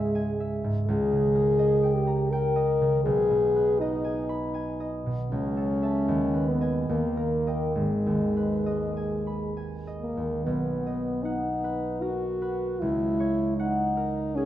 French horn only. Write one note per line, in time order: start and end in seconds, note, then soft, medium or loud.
0.00 0.52 G#3 soft
0.87 1.96 G#4 medium
1.95 2.32 G4 soft
2.31 3.03 A#4 medium
3.04 3.81 G#4 medium
3.79 4.92 D#4 soft
5.31 6.50 C#4 medium
6.49 6.92 B3 soft
6.90 7.76 A#3 soft
7.77 9.53 G#3 soft
10.02 10.46 A#3 soft
10.44 11.25 B3 soft
11.23 12.03 D#4 soft
12.01 12.83 F#4 medium
12.81 13.56 E4 medium
13.57 14.37 D#4 medium
14.35 14.45 C#4 medium